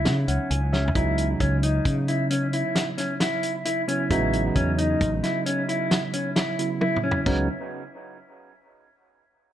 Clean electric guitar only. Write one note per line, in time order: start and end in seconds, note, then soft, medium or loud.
0.00 0.14 E4 medium
0.28 0.59 C#4 medium
0.73 0.89 C#4 medium
0.96 1.27 E4 medium
1.41 1.56 C#4 medium
1.63 1.95 D#4 medium
2.08 2.24 E4 medium
2.31 2.46 C#4 medium
2.53 2.85 E4 medium
2.98 3.14 C#4 medium
3.21 3.52 E4 medium
3.65 3.81 E4 medium
3.88 4.04 C#4 medium
4.11 4.42 E4 medium
4.56 4.71 C#4 medium
4.78 5.10 D#4 medium
5.24 5.39 E4 medium
5.46 5.62 C#4 medium
5.69 6.00 E4 medium
6.14 6.29 C#4 medium
6.36 6.67 E4 medium
6.81 6.97 E4 medium
7.04 7.19 C#4 medium
7.26 7.47 C#4 medium